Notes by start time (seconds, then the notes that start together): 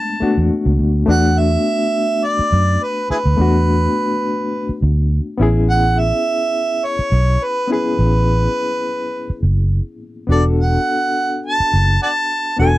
Already playing: G#3 A3 B3 D4 A5
0.20 A3 B3 D4 F#4, muted fingered electric bass stroke
0.38 E2
0.66 C#2
0.79 D2
1.06 E2 A3 B3 D4 F#5
1.11 F#4
1.39 E5
2.24 D5
2.39 muted fingered electric bass stroke
2.52 F#2
2.83 B4
3.10 E4 G#4 B4, muted fingered electric bass stroke
3.25 D2
3.37 E2 A3 B3 D4
3.41 F#4
4.69 muted fingered electric bass stroke
4.82 D2
5.38 A1 B3 C#4 E4
5.42 G#4
5.70 F#5
5.99 E5
6.85 C#5
6.99 muted fingered electric bass stroke
7.12 B1
7.43 B4
7.67 B3 C#4 E4
7.72 G#4 B4
7.99 A1
9.30 muted fingered electric bass stroke
9.43 F#1
10.27 E1 B3 D4 F#4 D5
10.32 A4
10.60 F#5
11.46 A5
11.60 muted fingered electric bass stroke
11.73 F#1
12.02 D5 F#5 A5
12.57 E1 B3 D4 F#4 G#5
12.62 A4